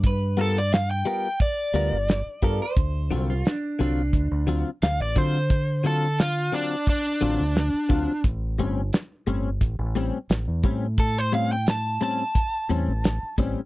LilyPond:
<<
  \new Staff \with { instrumentName = "Overdriven electric guitar" } { \time 4/4 \key a \dorian \tempo 4 = 88 r8 a'16 d''16 f''16 g''8. d''2 | r2. eis''16 d''16 c''8~ | c''8 a'8 eis'8 d'8 d'2 | r1 |
a'16 bis'16 f''16 g''16 a''8 a''2 r8 | }
  \new Staff \with { instrumentName = "Clean electric guitar" } { \time 4/4 \key a \dorian b'8 r2. a'16 c''16~ | c''8. eis'16 d'8 d'4~ d'16 r4 r16 | r1 | r1 |
r1 | }
  \new Staff \with { instrumentName = "Clean electric guitar" } { \time 4/4 \key a \dorian r8 <g b f' ais'>8 r8 <g b f' ais'>8 r8 <g b f' ais'>8 r8 <g b f' ais'>8 | r8 <d fis c' eis'>8 r8 <d fis c' eis'>8 r8 <d fis c' eis'>8 r8 <d fis c' eis'>8 | r8 <d fis c' eis'>8 r8 <d fis c' eis'>8 r8 <d fis c' eis'>8 r8 <d fis c' eis'>8 | r8 <a, g bis cis'>8 r8 <a, g bis cis'>8 r8 <a, g bis cis'>8 r8 <a, g bis cis'>8 |
r8 <a, g bis cis'>8 r8 <a, g bis cis'>8 r8 <a, g bis cis'>8 r8 <a, g bis cis'>8 | }
  \new Staff \with { instrumentName = "Fingered electric bass" } { \clef bass \time 4/4 \key a \dorian g,4. r4 d,16 g,,8 r16 g,16 r16 | d,8 c,8 r8 c,8 d,16 d,8 r16 d,16 a,,16 d8~ | d4. r4 a,,16 d,8 r16 d,16 r16 | a,,8 g,,8 r8 g,,8 a,,16 a,,8 r16 a,,16 e,16 a,8~ |
a,4. r4 e,16 a,,8 r16 a,,16 r16 | }
  \new DrumStaff \with { instrumentName = "Drums" } \drummode { \time 4/4 <hh bd>8 hh8 <hh sn>8 hh8 <hh bd>8 hh8 <hh sn>8 <hh bd>8 | <hh bd>8 hh8 <hh sn>8 hh8 <hh bd>8 hh8 <hh sn>8 <hh bd>8 | <hh bd>8 hh8 <hh sn>8 hh8 <hh bd>8 hh8 <hh sn>8 <hh bd>8 | <hh bd>8 hh8 <hh sn>8 hh8 <hh bd>8 hh8 <hh sn>8 <hh bd>8 |
<hh bd>8 hh8 <hh sn>8 hh8 <hh bd>8 hh8 <hh sn>8 <hh bd>8 | }
>>